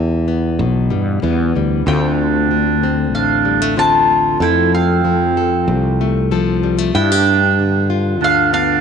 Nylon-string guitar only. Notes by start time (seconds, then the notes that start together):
Already playing: E2 E3 G4
0.28 B3
0.59 B2
0.90 G3
1.22 E3 B3
1.56 G3
1.86 D2 D3 A3 C4 F4
2.51 D3
2.83 C4
3.15 A2
3.45 G3
3.62 A3
3.77 D3 C4
4.10 A3
4.41 F2 F3 A3 A4
5.05 F3
5.37 A4
5.68 C3
6.01 A3
6.31 F3 A4
6.63 G3
6.78 A3
6.95 G2 E4
7.12 G4
7.59 D3
7.90 F4
8.21 D3
8.53 B3